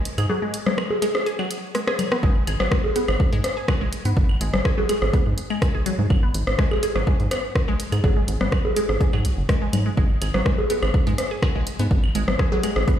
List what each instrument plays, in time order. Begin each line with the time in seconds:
0.05 closed hi-hat
0.18 analog synth bass G#2, synth arpeggio sound G#4, closed hi-hat, claves
0.29 synth arpeggio sound F#3, low bongo
0.42 synth arpeggio sound G#3
0.54 closed hi-hat
0.66 synth arpeggio sound G#3, cross-stick, low conga
0.78 cross-stick, claves
0.91 low bongo
1.02 synth arpeggio sound G#3, closed hi-hat, low bongo
1.15 cross-stick, low bongo
1.26 synth arpeggio sound G#4, closed hi-hat
1.39 synth arpeggio sound F#3, claves
1.51 closed hi-hat
1.75 synth arpeggio sound G#3, cross-stick, closed hi-hat
1.87 synth arpeggio sound G#4, cross-stick
1.99 closed hi-hat, low conga, claves
2.12 synth arpeggio sound B3, cross-stick
2.23 analog synth bass G#1, synth arpeggio sound G#3, kick
2.47 analog synth bass G#1, synth arpeggio sound G#4, closed hi-hat, claves
2.60 analog synth bass G#1, synth arpeggio sound F#3, cross-stick
2.71 synth arpeggio sound G#3, kick, cross-stick
2.84 low bongo
2.96 synth arpeggio sound B3, closed hi-hat, low bongo
3.08 analog synth bass G#1, cross-stick, claves
3.20 kick
3.33 analog synth bass G#2, synth arpeggio sound G#3, closed hi-hat
3.44 cross-stick, closed hi-hat
3.57 synth arpeggio sound G#4
3.68 synth arpeggio sound F#3, kick, cross-stick, claves
3.81 analog synth bass A#1, synth arpeggio sound G#3
3.93 closed hi-hat
4.05 analog synth bass G#2, synth arpeggio sound B3, closed hi-hat
4.17 analog synth bass G#1, kick
4.29 claves
4.41 analog synth bass G#1, synth arpeggio sound G#3, closed hi-hat
4.54 analog synth bass G#1, cross-stick, low conga
4.65 synth arpeggio sound G#4, kick, cross-stick
4.78 synth arpeggio sound F#3, low bongo
4.89 synth arpeggio sound G#3, closed hi-hat, low bongo, claves
5.02 analog synth bass G#1, cross-stick, low bongo
5.13 synth arpeggio sound B3, kick, closed hi-hat
5.26 analog synth bass G#2
5.38 closed hi-hat
5.50 synth arpeggio sound G#3, claves
5.62 kick, cross-stick, closed hi-hat
5.75 analog synth bass A#1, synth arpeggio sound G#4
5.86 synth arpeggio sound F#3, closed hi-hat, low conga
5.99 analog synth bass G#2, synth arpeggio sound G#3
6.10 analog synth bass G#1, kick, claves
6.23 synth arpeggio sound B3
6.34 analog synth bass G#1, closed hi-hat
6.47 analog synth bass G#1, cross-stick
6.59 synth arpeggio sound G#3, kick, cross-stick
6.71 low bongo, claves
6.83 synth arpeggio sound G#4, closed hi-hat, low bongo
6.96 analog synth bass G#1, synth arpeggio sound F#3, cross-stick
7.07 synth arpeggio sound G#3, kick
7.20 analog synth bass G#2, closed hi-hat
7.31 synth arpeggio sound B3, cross-stick, closed hi-hat, claves
7.55 kick, cross-stick
7.68 analog synth bass A#1, synth arpeggio sound G#3
7.80 closed hi-hat
7.92 analog synth bass G#2, synth arpeggio sound G#4, closed hi-hat, claves
8.04 analog synth bass G#1, synth arpeggio sound F#3, kick, low bongo
8.17 synth arpeggio sound G#3
8.28 analog synth bass G#1, closed hi-hat
8.41 analog synth bass G#1, synth arpeggio sound B3, cross-stick, low conga
8.52 kick, cross-stick, claves
8.65 low bongo
8.76 synth arpeggio sound G#3, closed hi-hat, low bongo
8.89 analog synth bass G#1, cross-stick, low bongo
9.01 synth arpeggio sound G#4, kick, closed hi-hat
9.13 analog synth bass G#2, synth arpeggio sound F#3, claves
9.25 analog synth bass B1, closed hi-hat
9.37 analog synth bass F#1
9.49 synth arpeggio sound G#3, kick, cross-stick, closed hi-hat
9.62 synth arpeggio sound G#3
9.73 analog synth bass G#2, closed hi-hat, low conga, claves
9.86 synth arpeggio sound G#3
9.97 analog synth bass G#1, synth arpeggio sound G#3, kick
10.21 analog synth bass G#1, synth arpeggio sound G#4, closed hi-hat, claves
10.34 analog synth bass G#1, synth arpeggio sound F#3, cross-stick
10.46 synth arpeggio sound G#3, kick, cross-stick
10.58 low bongo
10.70 synth arpeggio sound B3, closed hi-hat, low bongo
10.83 analog synth bass G#1, cross-stick, claves
10.94 kick
11.07 analog synth bass G#2, synth arpeggio sound G#3, closed hi-hat
11.18 cross-stick, closed hi-hat
11.31 synth arpeggio sound G#4
11.43 synth arpeggio sound F#3, kick, cross-stick, claves
11.55 analog synth bass A#1, synth arpeggio sound G#3
11.67 closed hi-hat
11.79 analog synth bass G#2, synth arpeggio sound B3, closed hi-hat
11.91 analog synth bass G#1, kick
12.04 claves
12.15 analog synth bass G#1, synth arpeggio sound G#3, closed hi-hat
12.28 analog synth bass G#1, cross-stick, low conga
12.39 synth arpeggio sound G#4, kick, cross-stick
12.52 synth arpeggio sound F#3, low bongo
12.63 synth arpeggio sound G#3, closed hi-hat, low bongo, claves
12.76 analog synth bass G#1, cross-stick, low bongo
12.88 synth arpeggio sound B3, kick, closed hi-hat